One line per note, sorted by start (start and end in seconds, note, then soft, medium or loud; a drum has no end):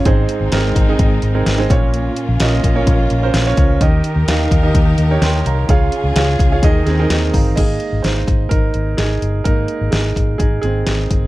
0.05 0.25 G#1 medium
0.05 0.72 G#2 medium
0.05 1.68 G#3 medium
0.05 0.47 C4 medium
0.05 1.68 C4 medium
0.05 0.47 D#4 medium
0.05 1.68 D#4 medium
0.05 0.47 G#4 medium
0.05 0.47 C5 medium
0.05 kick loud
0.05 closed hi-hat medium
0.29 closed hi-hat medium
0.41 0.50 G#1 medium
0.52 0.72 G#1 loud
0.52 0.84 C4 medium
0.52 0.84 D#4 medium
0.52 0.84 G#4 medium
0.52 0.84 A#4 medium
0.52 snare loud
0.52 closed hi-hat medium
0.76 0.95 G#1 medium
0.76 kick medium
0.76 closed hi-hat medium
0.89 1.30 C4 medium
0.89 1.30 D#4 medium
0.89 1.30 G#4 medium
0.89 1.30 D#5 medium
0.99 1.18 G#1 loud
0.99 kick medium
0.99 closed hi-hat medium
1.22 1.42 G#1 medium
1.22 closed hi-hat medium
1.35 1.55 C4 medium
1.35 1.55 D#4 medium
1.35 1.55 G#4 medium
1.35 1.55 A#4 medium
1.46 1.66 G#1 medium
1.46 snare medium
1.46 closed hi-hat medium
1.58 1.70 C4 medium
1.58 1.70 D#4 medium
1.58 1.70 G#4 medium
1.58 1.70 C5 medium
1.70 2.08 A#1 medium
1.70 2.37 A#2 medium
1.70 3.79 A#3 medium
1.70 3.79 C#4 medium
1.70 2.32 C#4 medium
1.70 3.79 F4 medium
1.70 2.32 F4 medium
1.70 2.32 A#4 medium
1.70 2.32 C#5 medium
1.70 kick loud
1.70 closed hi-hat medium
1.94 closed hi-hat medium
2.16 closed hi-hat medium
2.29 2.38 A#1 medium
2.40 2.60 A#1 medium
2.40 2.71 C#4 medium
2.40 2.72 F4 medium
2.40 2.72 A#4 medium
2.40 2.72 D#5 medium
2.40 snare loud
2.40 closed hi-hat loud
2.64 2.83 A#1 medium
2.64 kick medium
2.64 closed hi-hat medium
2.75 3.17 C#4 medium
2.75 3.17 F4 medium
2.75 3.17 A#4 medium
2.75 3.17 C#5 medium
2.87 3.06 A#1 medium
2.87 kick loud
2.87 closed hi-hat medium
3.10 3.30 A#1 medium
3.10 closed hi-hat medium
3.23 3.43 C#4 medium
3.23 3.43 F4 medium
3.23 3.43 A#4 medium
3.23 3.44 C5 medium
3.34 3.54 A#1 medium
3.34 snare loud
3.34 closed hi-hat medium
3.46 3.77 C#4 medium
3.46 3.77 F4 medium
3.46 3.77 A#4 medium
3.46 3.77 C#5 loud
3.57 3.77 C#2 medium
3.57 kick medium
3.57 closed hi-hat medium
3.80 4.00 D#2 medium
3.80 5.67 D#3 medium
3.80 4.48 D#3 medium
3.80 5.67 D#4 medium
3.80 4.23 D#4 medium
3.80 5.67 G4 medium
3.80 4.23 G4 medium
3.80 5.67 A#4 medium
3.80 4.23 A#4 medium
3.80 4.23 D#5 medium
3.80 kick loud
3.80 closed hi-hat medium
4.04 closed hi-hat medium
4.16 4.26 D#2 medium
4.28 4.47 D#2 medium
4.28 4.59 D#4 medium
4.28 4.59 G4 medium
4.28 4.59 A#4 medium
4.28 4.59 F5 medium
4.28 snare loud
4.28 closed hi-hat loud
4.51 4.71 D#2 medium
4.51 kick medium
4.51 closed hi-hat medium
4.63 5.05 D#4 medium
4.63 5.04 G4 medium
4.63 5.05 A#4 medium
4.63 5.05 D#5 medium
4.75 4.94 D#2 loud
4.75 kick loud
4.75 closed hi-hat medium
4.98 5.18 D#2 medium
4.98 closed hi-hat medium
5.11 5.31 D#4 medium
5.11 5.31 G4 medium
5.11 5.31 A#4 medium
5.11 5.31 C#5 medium
5.22 5.41 D#2 medium
5.22 5.45 G5 soft
5.22 5.45 C6 medium
5.22 snare medium
5.22 closed hi-hat medium
5.46 5.65 C2 medium
5.46 5.69 F5 soft
5.46 5.91 A#5 medium
5.46 closed hi-hat medium
5.68 5.88 C#2 medium
5.68 6.62 C#3 medium
5.68 6.36 C#3 medium
5.68 6.62 C#4 medium
5.68 6.62 F4 medium
5.68 6.11 F4 medium
5.68 7.55 G#4 loud
5.68 6.11 G#4 medium
5.68 6.11 C#5 medium
5.68 6.11 F5 medium
5.68 kick loud
5.68 closed hi-hat medium
5.92 closed hi-hat medium
6.04 6.14 C#2 medium
6.16 6.35 C#2 medium
6.16 6.47 F4 medium
6.16 6.48 G#4 medium
6.16 6.48 C#5 medium
6.16 6.48 F5 medium
6.16 snare loud
6.16 closed hi-hat loud
6.39 6.59 C#2 medium
6.39 kick medium
6.39 closed hi-hat medium
6.52 6.64 F4 medium
6.52 6.62 G#4 medium
6.52 6.64 C#5 medium
6.52 6.63 F5 medium
6.62 6.82 D#2 loud
6.62 7.56 D#3 medium
6.62 7.30 D#3 medium
6.62 7.56 D#4 medium
6.62 6.95 D#4 medium
6.62 6.85 G#4 medium
6.62 7.56 A#4 medium
6.62 6.95 A#4 medium
6.62 6.95 D#5 loud
6.62 kick loud
6.62 closed hi-hat loud
6.86 7.06 D#2 medium
6.86 7.54 C4 medium
6.86 6.98 G#4 medium
6.86 snare soft
6.86 closed hi-hat medium
6.99 7.20 D#4 medium
6.99 7.20 G#4 medium
6.99 7.11 A#4 medium
6.99 7.10 D#5 medium
7.10 7.29 D#2 medium
7.10 7.34 A#4 medium
7.10 7.33 D#5 medium
7.10 snare loud
7.10 closed hi-hat medium
7.34 7.53 G1 medium
7.34 7.79 F5 medium
7.34 7.79 A#5 medium
7.34 kick medium
7.34 open hi-hat medium
7.56 7.76 G#1 medium
7.56 8.24 G#3 soft
7.56 8.24 A#3 soft
7.56 8.03 D#4 medium
7.56 8.02 G#4 medium
7.56 8.05 D#5 medium
7.56 kick medium
7.56 closed hi-hat medium
7.56 crash medium
7.80 closed hi-hat medium
7.93 8.02 G#1 medium
8.02 8.23 G#1 medium
8.02 8.48 D#4 medium
8.02 8.52 C5 medium
8.02 snare medium
8.02 closed hi-hat medium
8.27 8.47 G#1 medium
8.27 kick medium
8.27 closed hi-hat medium
8.49 8.70 G#1 medium
8.49 8.96 D#4 medium
8.49 8.99 A#4 medium
8.49 kick medium
8.49 closed hi-hat medium
8.74 8.94 G#1 medium
8.74 closed hi-hat medium
8.97 9.18 G#1 medium
8.97 9.43 D#4 medium
8.97 9.46 G#4 medium
8.97 snare medium
8.97 closed hi-hat medium
9.22 9.41 G1 medium
9.22 closed hi-hat medium
9.44 9.65 G#1 medium
9.44 9.77 G#3 soft
9.44 9.77 A#3 soft
9.44 9.90 D#4 medium
9.44 9.94 A#4 medium
9.44 kick medium
9.44 closed hi-hat medium
9.68 closed hi-hat medium
9.81 9.91 G#1 medium
9.91 10.12 G#1 medium
9.91 10.37 D#4 medium
9.91 10.37 G#4 medium
9.91 snare loud
9.91 closed hi-hat medium
10.16 10.35 G#1 medium
10.16 kick medium
10.16 closed hi-hat medium
10.38 10.59 G#1 medium
10.38 10.62 D#4 medium
10.38 10.60 G#4 medium
10.38 kick medium
10.38 closed hi-hat medium
10.62 10.83 G#1 medium
10.62 11.27 C4 medium
10.62 11.27 G#4 medium
10.62 closed hi-hat soft
10.87 11.07 G#1 medium
10.87 snare medium
10.87 closed hi-hat medium
11.10 11.27 G1 medium
11.10 kick medium
11.10 closed hi-hat medium